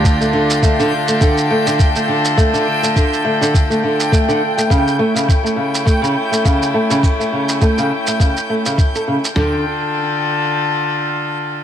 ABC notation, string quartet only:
X:1
M:4/4
L:1/8
Q:"Swing 16ths" 1/4=103
K:Dm
V:1 name="String quartet"
[D,DFA]8- | [D,DFA]8 | [A,^CE]8- | [A,^CE]8 |
[D,DFA]8 |]